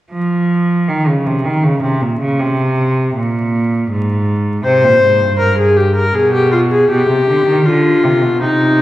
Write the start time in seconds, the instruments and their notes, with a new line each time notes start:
0.11 cello F3
0.88 cello D#3
1.07 cello C#3
1.26 cello C3
1.45 cello D#3
1.63 cello C#3
1.83 cello C3
2.01 cello A#2
2.21 cello C#3
2.39 cello C3
3.15 cello A#2
3.91 cello G#2
4.65 cello C3, viola C5
4.84 cello A#2
5.02 cello G#2
5.21 cello G2
5.40 viola A#4
5.58 viola G#4
5.77 viola G4
5.96 viola A#4
6.15 cello B2, viola G#4
6.34 viola G4
6.52 viola F4
6.71 viola G#4
6.90 cello B2, viola G4
7.09 cello C3
7.28 cello D3
7.47 cello D#3
7.66 cello D3, viola F4
8.04 cello C3
8.23 cello B2
8.42 cello C3, viola D#4